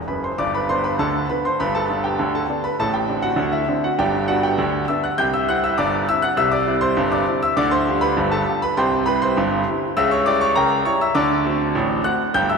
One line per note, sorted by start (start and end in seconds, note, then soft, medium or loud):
0.08 0.30 F#1 medium
0.08 0.30 F#2 medium
0.08 0.22 B4 medium
0.08 0.23 B5 medium
0.24 0.38 C5 medium
0.24 0.39 C6 medium
0.38 0.64 G1 medium
0.38 0.64 G2 medium
0.38 0.53 D5 medium
0.38 0.53 D6 loud
0.55 0.68 B4 medium
0.55 0.69 B5 medium
0.69 0.85 D3 soft
0.69 0.86 B3 soft
0.69 0.86 D4 medium
0.69 0.83 C5 medium
0.69 0.84 C6 loud
0.84 0.98 B4 medium
0.84 0.99 B5 medium
0.99 1.24 D2 medium
0.99 1.24 D3 medium
0.99 1.27 A4 medium
0.99 1.29 A5 medium
1.29 1.46 D3 soft
1.29 1.46 B3 soft
1.29 1.46 D4 soft
1.29 1.44 B4 medium
1.29 1.44 B5 medium
1.45 1.59 C5 medium
1.45 1.59 C6 medium
1.60 1.85 G1 medium
1.60 1.85 G2 medium
1.60 1.74 B4 medium
1.60 1.74 B5 loud
1.75 2.03 A4 medium
1.75 2.04 A5 medium
1.90 2.06 D3 medium
1.90 2.06 B3 soft
1.90 2.07 D4 medium
2.04 2.32 G4 medium
2.04 2.34 G5 medium
2.19 2.44 D2 medium
2.19 2.44 D3 medium
2.35 2.62 A4 medium
2.35 2.64 A5 medium
2.49 2.65 D3 medium
2.49 2.66 B3 medium
2.49 2.66 D4 medium
2.64 2.79 B4 medium
2.64 2.79 B5 medium
2.79 3.04 A1 medium
2.79 3.04 A2 medium
2.79 2.93 A4 medium
2.79 2.94 A5 loud
2.94 3.22 G4 medium
2.94 3.23 G5 medium
3.09 3.25 D3 medium
3.09 3.25 C4 medium
3.09 3.25 D4 medium
3.22 3.51 F#4 medium
3.22 3.53 F#5 loud
3.36 3.62 D2 medium
3.36 3.62 D3 medium
3.52 3.81 E4 medium
3.52 3.83 E5 medium
3.68 3.85 D3 medium
3.68 3.84 C4 medium
3.68 3.85 D4 medium
3.84 3.98 F#4 medium
3.84 3.98 F#5 medium
3.99 4.24 G1 medium
3.99 4.24 G2 medium
3.99 4.27 G4 medium
3.99 4.27 D5 medium
3.99 4.28 G5 loud
4.28 4.45 G3 medium
4.28 4.45 B3 medium
4.28 4.45 D4 medium
4.28 4.42 F#4 medium
4.28 4.43 F#5 loud
4.43 4.85 G4 medium
4.43 4.88 G5 loud
4.58 4.83 D2 medium
4.58 4.83 D3 medium
4.88 5.05 G3 medium
4.88 5.05 B3 soft
4.88 5.05 D4 medium
4.88 5.02 E5 medium
4.88 5.03 E6 loud
5.04 5.18 F#5 medium
5.04 5.18 F#6 medium
5.18 5.43 C2 medium
5.18 5.43 C3 medium
5.18 5.32 G5 medium
5.18 5.33 G6 loud
5.34 5.48 E5 medium
5.34 5.48 E6 loud
5.49 5.65 G3 medium
5.49 5.65 C4 medium
5.49 5.66 E4 medium
5.49 5.63 F#5 medium
5.49 5.63 F#6 loud
5.64 5.77 E5 medium
5.64 5.78 E6 loud
5.78 6.03 G1 loud
5.78 6.03 G2 medium
5.78 6.06 D5 medium
5.78 6.07 D6 loud
6.08 6.24 G3 medium
6.08 6.25 C4 medium
6.08 6.25 E4 medium
6.08 6.22 E5 medium
6.08 6.23 E6 loud
6.22 6.37 F#5 medium
6.22 6.37 F#6 loud
6.37 6.62 C2 medium
6.37 6.62 C3 loud
6.37 6.52 E5 medium
6.37 6.52 E6 loud
6.52 6.80 D5 medium
6.52 6.82 D6 loud
6.67 6.83 G3 medium
6.67 6.84 C4 medium
6.67 6.84 E4 medium
6.81 7.10 C5 medium
6.81 7.11 C6 loud
6.97 7.22 G1 loud
6.97 7.22 G2 loud
7.12 7.40 D5 medium
7.12 7.41 D6 loud
7.27 7.43 G3 medium
7.27 7.44 C4 medium
7.27 7.44 E4 medium
7.43 7.56 E5 medium
7.43 7.57 E6 loud
7.57 7.82 D2 medium
7.57 7.82 D3 loud
7.57 7.71 D5 loud
7.57 7.72 D6 loud
7.71 8.00 C5 medium
7.71 8.01 C6 loud
7.87 8.03 G3 medium
7.87 8.04 F4 medium
7.87 8.04 G4 medium
8.01 8.29 B4 medium
8.01 8.31 B5 loud
8.17 8.42 G1 loud
8.17 8.42 G2 loud
8.31 8.60 A4 medium
8.31 8.61 A5 loud
8.48 8.63 G3 medium
8.48 8.64 F4 medium
8.48 8.64 G4 medium
8.62 8.76 B4 medium
8.62 8.77 B5 loud
8.77 9.02 C2 medium
8.77 9.02 C3 loud
8.77 9.05 C5 medium
8.77 9.05 G5 medium
8.77 9.06 C6 loud
9.06 9.22 G3 medium
9.06 9.23 E4 medium
9.06 9.23 G4 medium
9.06 9.20 B4 medium
9.06 9.21 B5 loud
9.22 9.63 C5 medium
9.22 9.66 C6 loud
9.37 9.62 G1 loud
9.37 9.62 G2 loud
9.68 9.84 G3 medium
9.68 9.84 E4 medium
9.68 9.84 G4 medium
9.97 10.21 C#2 loud
9.97 10.21 C#3 loud
9.97 10.10 E5 loud
9.97 10.11 E6 loud
10.11 10.25 C#5 medium
10.11 10.25 C#6 loud
10.26 10.42 G3 medium
10.26 10.42 E4 medium
10.26 10.43 G4 medium
10.26 10.40 D5 medium
10.26 10.40 D6 loud
10.41 10.55 C#5 medium
10.41 10.55 C#6 loud
10.55 10.81 C#2 medium
10.55 10.80 C#3 medium
10.55 10.83 A#4 medium
10.55 10.84 G5 medium
10.55 10.85 A#5 loud
10.85 11.02 G3 medium
10.85 11.02 E4 medium
10.85 11.03 G4 medium
10.85 11.00 C#5 medium
10.85 11.00 C#6 loud
11.01 11.15 E5 medium
11.01 11.15 E6 loud
11.15 11.40 D2 medium
11.15 11.40 D3 loud
11.15 12.01 D5 medium
11.15 12.01 A5 medium
11.15 12.04 D6 loud
11.45 11.61 A3 medium
11.45 11.62 C4 medium
11.45 11.62 F#4 medium
11.75 12.00 A1 loud
11.75 12.00 A2 medium
12.04 12.21 A3 medium
12.04 12.21 C4 medium
12.04 12.21 F#4 medium
12.04 12.32 F#5 medium
12.04 12.34 F#6 loud
12.34 12.58 G1 medium
12.34 12.58 G2 loud
12.34 12.48 G5 medium
12.34 12.49 G6 loud
12.50 12.58 E5 medium
12.50 12.58 E6 loud